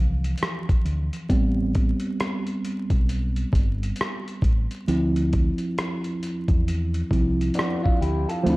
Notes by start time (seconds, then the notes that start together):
Already playing: C2
0.24 closed hi-hat
0.38 closed hi-hat
0.43 cross-stick
0.69 kick, closed hi-hat
0.85 D2, closed hi-hat
1.13 closed hi-hat
1.29 A1 G3 B3 C4, kick, closed hi-hat
1.75 kick, closed hi-hat
2.00 closed hi-hat
2.20 cross-stick, closed hi-hat
2.47 closed hi-hat
2.65 closed hi-hat
2.90 B1, kick, closed hi-hat
3.09 closed hi-hat
3.36 closed hi-hat
3.53 G1, kick, closed hi-hat
3.83 closed hi-hat
3.96 closed hi-hat
4.01 cross-stick
4.28 closed hi-hat
4.42 A1, kick, closed hi-hat
4.71 closed hi-hat
4.88 D2 F3 C4 E4, closed hi-hat
5.16 closed hi-hat
5.33 kick, closed hi-hat
5.58 closed hi-hat
5.78 cross-stick, closed hi-hat
6.04 closed hi-hat
6.23 closed hi-hat
6.48 E2, kick, closed hi-hat
6.68 closed hi-hat
6.94 closed hi-hat
7.11 C2 F3 C4 E4, kick, closed hi-hat
7.41 closed hi-hat
7.54 B3 D4, closed hi-hat
7.59 cross-stick
7.83 D4 F4, kick
8.01 D2 E4 G4, closed hi-hat
8.29 F4 A4, closed hi-hat
8.44 D2 F3 A3 C4, closed hi-hat
8.48 D4 E4